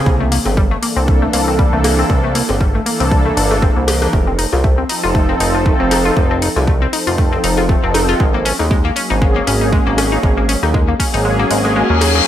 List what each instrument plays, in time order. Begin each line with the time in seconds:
0.06 analog synth bass C2, analog synth pad E3 A#3 D4 A4, synth arpeggio sound G3, kick
0.20 synth arpeggio sound A3
0.32 synth arpeggio sound A#3, open hi-hat
0.45 analog synth bass G1, analog synth pad E3 A#3 D4 A4, synth arpeggio sound C4, cowbell
0.57 synth arpeggio sound G3, kick
0.71 synth arpeggio sound A3
0.82 analog synth pad E3 A#3 D4 A4, synth arpeggio sound A#3, open hi-hat
0.96 analog synth bass C2, synth arpeggio sound C4
1.08 synth arpeggio sound G3, kick
1.22 analog synth pad E3 A#3 D4 A4, synth arpeggio sound A3
1.33 analog synth bass C2, synth arpeggio sound A#3, open hi-hat
1.48 synth arpeggio sound C4
1.58 analog synth pad E3 A#3 D4 A4, synth arpeggio sound G3, kick
1.73 analog synth bass C2, synth arpeggio sound A3
1.84 synth arpeggio sound A#3, open hi-hat, cowbell
1.99 synth arpeggio sound C4
2.09 analog synth bass C2, analog synth pad E3 A#3 D4 A4, synth arpeggio sound G3, kick
2.24 synth arpeggio sound A3
2.35 synth arpeggio sound A#3, open hi-hat
2.49 analog synth bass G1, analog synth pad E3 A#3 D4 A4, synth arpeggio sound C4, cowbell
2.61 synth arpeggio sound G3, kick
2.75 synth arpeggio sound A3
2.86 analog synth pad E3 A#3 D4 A4, synth arpeggio sound A#3, open hi-hat
3.00 analog synth bass C2, synth arpeggio sound C4, open hi-hat
3.11 synth arpeggio sound G3, kick
3.25 analog synth pad E3 A#3 D4 A4, synth arpeggio sound A3
3.37 analog synth bass G1, synth arpeggio sound D4, open hi-hat
3.51 synth arpeggio sound A3, cowbell
3.62 synth arpeggio sound C4, kick
3.76 analog synth bass C2, analog synth pad E3 A#3 D4 A#4, synth arpeggio sound A#3
3.88 synth arpeggio sound G4, open hi-hat, cowbell
4.02 synth arpeggio sound D4, cowbell
4.13 analog synth bass F1, analog synth pad F3 C4 D#4 A4, synth arpeggio sound A3, kick
4.27 synth arpeggio sound C4
4.38 synth arpeggio sound D#4, open hi-hat
4.52 analog synth bass C2, analog synth pad F3 C4 D#4 A4, synth arpeggio sound F4, cowbell
4.64 synth arpeggio sound A3, kick
4.78 synth arpeggio sound C4
4.89 analog synth pad F3 C4 D#4 A4, synth arpeggio sound D#4, open hi-hat
5.04 analog synth bass F1, synth arpeggio sound F4
5.15 synth arpeggio sound A3, kick
5.29 analog synth pad F3 C4 D#4 A4, synth arpeggio sound C4
5.40 analog synth bass F1, synth arpeggio sound D#4, open hi-hat
5.55 synth arpeggio sound F4
5.65 analog synth pad F3 C4 D#4 A4, synth arpeggio sound A3, kick
5.80 analog synth bass F1, synth arpeggio sound C4
5.91 synth arpeggio sound D#4, open hi-hat, cowbell
6.05 synth arpeggio sound F4
6.16 analog synth bass F1, analog synth pad F3 C4 D#4 A4, synth arpeggio sound A3, kick
6.31 synth arpeggio sound C4
6.42 synth arpeggio sound D#4, open hi-hat
6.56 analog synth bass C2, analog synth pad F3 C4 D#4 A4, synth arpeggio sound F4, cowbell
6.67 synth arpeggio sound A3, kick
6.82 synth arpeggio sound C4
6.92 analog synth pad F3 C4 D#4 A4, synth arpeggio sound D#4, open hi-hat
7.07 analog synth bass F1, synth arpeggio sound F4, open hi-hat
7.18 synth arpeggio sound A3, kick
7.32 analog synth pad F3 C4 D#4 A4, synth arpeggio sound C4
7.44 analog synth bass F1, synth arpeggio sound D#4, open hi-hat
7.57 synth arpeggio sound F4, cowbell
7.68 analog synth pad F3 C4 D#4 A4, synth arpeggio sound A3, kick
7.83 analog synth bass F1, synth arpeggio sound C4
7.94 synth arpeggio sound D#4, open hi-hat, cowbell
8.09 synth arpeggio sound F4, cowbell
8.19 analog synth bass G#1, analog synth pad F#3 A#3 C#4 G#4, synth arpeggio sound G#3, kick
8.34 synth arpeggio sound A#3
8.45 synth arpeggio sound C#4, open hi-hat
8.59 analog synth bass D#2, analog synth pad F#3 A#3 C#4 G#4, synth arpeggio sound D#4, cowbell
8.71 synth arpeggio sound G#3, kick
8.85 synth arpeggio sound A#3
8.96 analog synth pad F#3 A#3 C#4 G#4, synth arpeggio sound C#4, open hi-hat
9.10 analog synth bass G#1, synth arpeggio sound D#4
9.22 synth arpeggio sound G#3, kick
9.36 analog synth pad F#3 A#3 C#4 G#4, synth arpeggio sound A#3
9.47 analog synth bass G#1, synth arpeggio sound C#4, open hi-hat
9.61 synth arpeggio sound D#4
9.72 analog synth pad F#3 A#3 C#4 G#4, synth arpeggio sound G#3, kick
9.87 analog synth bass G#1, synth arpeggio sound A#3
9.98 synth arpeggio sound C#4, open hi-hat, cowbell
10.12 synth arpeggio sound D#4
10.23 analog synth bass G#1, analog synth pad F#3 A#3 C#4 G#4, synth arpeggio sound G#3, kick
10.37 synth arpeggio sound A#3
10.49 synth arpeggio sound C#4, open hi-hat
10.62 analog synth bass D#2, analog synth pad F#3 A#3 C#4 G#4, synth arpeggio sound D#4, cowbell
10.74 synth arpeggio sound G#3, kick
10.88 synth arpeggio sound A#3
10.99 analog synth pad F#3 A#3 C#4 G#4, synth arpeggio sound C#4, kick, open hi-hat
11.14 analog synth bass G#1, synth arpeggio sound D#4, open hi-hat
11.25 synth arpeggio sound G#3, reverse cymbal
11.39 analog synth pad F#3 A#3 C#4 G#4, synth arpeggio sound A#3
11.51 analog synth bass G#1, synth arpeggio sound G#3, open hi-hat
11.65 synth arpeggio sound G#3, cowbell
11.75 analog synth pad F#3 A#3 C#4 G#4, synth arpeggio sound G#3
11.90 analog synth bass D#2, synth arpeggio sound C#4
12.01 synth arpeggio sound D#4, open hi-hat, cowbell
12.15 synth arpeggio sound G#4, cowbell